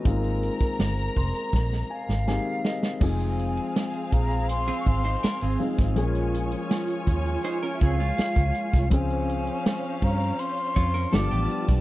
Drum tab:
CC |----------------|x---------------|----------------|----------------|
HH |xxxxxxox--------|-xxxxxxxxxxxxxox|xxxxxxxxxxxxxxxx|xxxxxxoxxxxxxxxx|
SD |----o---oo-oo-oo|----o-------o--o|----o-------o--o|----o-------o--o|
BD |o--o--o-o-------|o-----o---o----o|------o---o--o-o|o-----o---o----o|